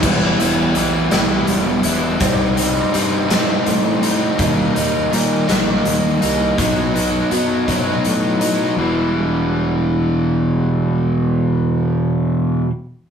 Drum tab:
CC |x-----|------|------|------|
HH |-xxxxx|xxxxxx|xxxxxx|xxxxxx|
SD |---o--|---o--|---o--|------|
BD |o-----|o-----|o-----|o--o--|

CC |------|------|
HH |------|------|
SD |------|------|
BD |------|------|